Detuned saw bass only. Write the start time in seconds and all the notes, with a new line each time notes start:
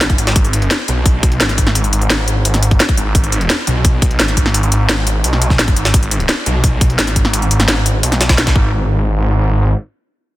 Already playing: B1
0.18 G#1
0.36 G#1
0.88 B1
1.40 G#1
1.93 G#1
2.45 G#1
2.97 G#1
3.15 G#1
3.67 B1
4.19 G#1
4.72 G#1
5.24 B1
5.76 G#1
5.94 G#1
6.46 B1
6.99 G#1
7.51 G#1
8.03 B1
8.56 G#1